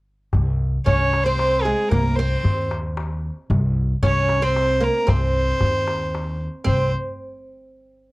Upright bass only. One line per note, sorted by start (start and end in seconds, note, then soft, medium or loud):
0.34 0.76 C2 medium
0.87 1.71 C2 medium
1.91 2.34 C2 medium
2.44 3.29 D#2 medium
3.50 3.92 C2 medium
4.03 4.87 C2 medium
5.08 5.51 C2 medium
5.62 6.46 D#2 medium
6.68 6.92 C2 medium